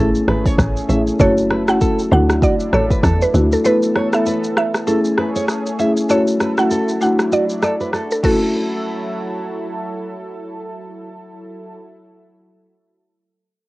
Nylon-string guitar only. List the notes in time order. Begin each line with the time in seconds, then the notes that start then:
0.28 B4
0.46 C#5
0.89 E5
1.20 A4
1.50 B4
1.81 A4
2.42 F#4
2.73 A4
2.91 B4
3.04 A4
3.65 B4
3.96 C#5
4.26 B4
4.88 A4
5.18 B4
5.36 C#5
5.79 E5
6.10 A4
6.40 B4
6.71 A4
7.32 F#4
7.63 A4
7.81 B4
7.93 A4
8.24 A4